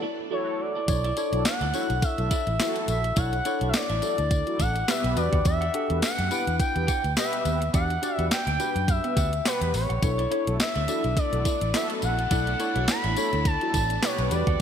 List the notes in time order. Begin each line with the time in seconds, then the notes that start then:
Already playing: A3 B3 D4 E4 A4 D5
0.02 E4 A4 D5
0.18 muted clean electric guitar stroke
0.30 E4 F#4 A4 C#5 D5
0.47 muted clean electric guitar stroke
0.60 D5, muted clean electric guitar stroke
0.75 E4 A4 D5
0.88 B1 D4 E4 A4 C#5, muted clean electric guitar stroke, kick, closed hi-hat, tambourine
1.04 E4 A4 D5, closed hi-hat
1.17 D4 E4 A4 C#5 D5, closed hi-hat, tambourine
1.32 B1 E4 F#4 A4, muted clean electric guitar stroke, closed hi-hat
1.45 F#5, snare, clap, closed hi-hat, tambourine
1.61 D2 E4 A4 D5, closed hi-hat
1.73 D4 E4 F#4 A4 C#5 E5, closed hi-hat, tambourine
1.90 B1, muted clean electric guitar stroke, closed hi-hat
2.02 E5, muted clean electric guitar stroke, kick, closed hi-hat, tambourine
2.18 B1 E4 F#4 A4, muted clean electric guitar stroke, closed hi-hat
2.31 E4 A4 D5, kick, closed hi-hat, tambourine
2.47 A1, muted clean electric guitar stroke, closed hi-hat
2.59 E4 F#4 A4, snare, clap, closed hi-hat, tambourine
2.75 muted clean electric guitar stroke, closed hi-hat
2.88 A#1 E5, closed hi-hat, tambourine
3.04 muted clean electric guitar stroke, closed hi-hat
3.16 B1 D4 E4 A4 C#5 D5 F#5, kick, closed hi-hat, tambourine
3.32 muted clean electric guitar stroke, closed hi-hat
3.45 D4 E4 A4 C#5 D5, closed hi-hat, tambourine
3.61 B1 E4 F#4 A4 D5, closed hi-hat
3.69 E5
3.74 D5, muted clean electric guitar stroke, snare, clap, closed hi-hat, tambourine
3.89 A1 E4 A4 E5, closed hi-hat
4.02 D4 E4 F#4 A4 C#5, muted clean electric guitar stroke, closed hi-hat, tambourine
4.10 D5
4.18 D2, muted clean electric guitar stroke, closed hi-hat
4.31 muted clean electric guitar stroke, kick, closed hi-hat, tambourine
4.47 E4 F#4 A4, muted clean electric guitar stroke, closed hi-hat
4.59 A1 E4 A4 D5 F#5, kick, closed hi-hat, tambourine
4.75 muted clean electric guitar stroke, closed hi-hat
4.88 B3 E4 G4 A4 B4 D5 E5, snare, clap, closed hi-hat, tambourine
5.04 B1, muted clean electric guitar stroke, closed hi-hat
5.16 E2 D4 F#4 G4 B4 D5, muted clean electric guitar stroke, closed hi-hat, tambourine
5.32 D#2 G4 D5 F#5, kick, closed hi-hat
5.45 E2 E5, muted clean electric guitar stroke, kick, closed hi-hat, tambourine
5.61 G4 D5 F#5, closed hi-hat
5.73 D4 F#4 G4 A4 D5 F#5, closed hi-hat
5.90 E2 B3 G4 B4, muted clean electric guitar stroke, closed hi-hat
6.02 F#5, snare, clap, closed hi-hat, tambourine
6.18 F#2 G4 D5 F#5, closed hi-hat
6.31 B3 D4 E4 G4 B4 D5 G5, closed hi-hat, tambourine
6.46 E2, muted clean electric guitar stroke, closed hi-hat
6.59 G5, muted clean electric guitar stroke, kick, closed hi-hat, tambourine
6.75 E2 B3 G4 B4, muted clean electric guitar stroke, closed hi-hat
6.87 G4 D5 F#5, kick, closed hi-hat, tambourine
7.04 D2, muted clean electric guitar stroke, closed hi-hat
7.16 B3 G4 B4 E5, muted clean electric guitar stroke, snare, clap, closed hi-hat, tambourine
7.32 muted clean electric guitar stroke, closed hi-hat
7.45 D#2, closed hi-hat, tambourine
7.61 muted clean electric guitar stroke, closed hi-hat
7.73 E2 D4 F#4 G4 D5 F#5, kick, closed hi-hat, tambourine
7.90 muted clean electric guitar stroke, closed hi-hat
8.02 D4 F#4 G4 D5 F#5, closed hi-hat, tambourine
8.15 E2 B3 G4 B4 D5 E5 F#5, closed hi-hat
8.20 G4
8.31 G5, muted clean electric guitar stroke, snare, clap, closed hi-hat, tambourine
8.47 D2 G4 D5 G5, closed hi-hat
8.59 B3 D4 F#4 G4 B4, muted clean electric guitar stroke, closed hi-hat, tambourine
8.76 F#2, muted clean electric guitar stroke, closed hi-hat
8.88 E5, muted clean electric guitar stroke, kick, closed hi-hat, tambourine
9.04 B3 G4 B4, muted clean electric guitar stroke, closed hi-hat
9.16 D2 G4 D5 F#5, kick, closed hi-hat, tambourine
9.33 muted clean electric guitar stroke, closed hi-hat
9.45 B3 G4 B4 D5 F#5, snare, clap, closed hi-hat, tambourine
9.61 E2, muted clean electric guitar stroke, closed hi-hat
9.74 A1 C#5, muted clean electric guitar stroke, open hi-hat, tambourine
9.89 A#1 G4 D5 F#5, closed hi-hat
10.02 B1 A3 B3 D4 E4 A4 C#5, muted clean electric guitar stroke, kick, closed hi-hat, tambourine
10.18 E4 A4 D5, closed hi-hat
10.31 D4 E4 A4 C#5 D5, closed hi-hat
10.47 B1 E4 F#4 A4, muted clean electric guitar stroke, closed hi-hat
10.60 E5, snare, clap, closed hi-hat, tambourine
10.75 D2 E4 A4 D5, closed hi-hat
10.88 D4 E4 F#4 A4 D5 E5, closed hi-hat, tambourine
11.04 B1, muted clean electric guitar stroke, closed hi-hat
11.17 D5, muted clean electric guitar stroke, kick, closed hi-hat, tambourine
11.32 B1 E4 F#4 A4, muted clean electric guitar stroke, closed hi-hat
11.45 E4 A4 D5, kick, closed hi-hat, tambourine
11.61 A1, muted clean electric guitar stroke, closed hi-hat
11.74 E4 F#4 A4 E5, muted clean electric guitar stroke, snare, clap, closed hi-hat, tambourine
11.90 muted clean electric guitar stroke, closed hi-hat
12.02 A#1 F#5, closed hi-hat, tambourine
12.18 muted clean electric guitar stroke, closed hi-hat
12.31 B1 D4 E4 A4 D5, kick, closed hi-hat, tambourine
12.47 muted clean electric guitar stroke, closed hi-hat
12.59 D4 E4 A4 C#5 D5, closed hi-hat, tambourine
12.75 B1 E4 F#4 A4 D5, closed hi-hat
12.88 B5, muted clean electric guitar stroke, snare, clap, closed hi-hat, tambourine
13.04 A1 E4 A4 E5, closed hi-hat
13.16 D4 E4 F#4 A4 C#5, muted clean electric guitar stroke, closed hi-hat, tambourine
13.33 D2, muted clean electric guitar stroke, closed hi-hat
13.45 A5, muted clean electric guitar stroke, kick, closed hi-hat, tambourine
13.61 E4 F#4 A4, muted clean electric guitar stroke, closed hi-hat
13.74 A1 E4 A4 D5, kick, closed hi-hat, tambourine
13.90 muted clean electric guitar stroke, closed hi-hat
14.02 B3 E4 G4 A4 B4 C#5 D5, snare, clap, closed hi-hat, tambourine
14.18 B1, muted clean electric guitar stroke, closed hi-hat
14.31 E2 E3 G3 D4 F#4 G4 B4 D5 F#5, muted clean electric guitar stroke, closed hi-hat, tambourine
14.47 D#2 G4 D5 F#5, kick, closed hi-hat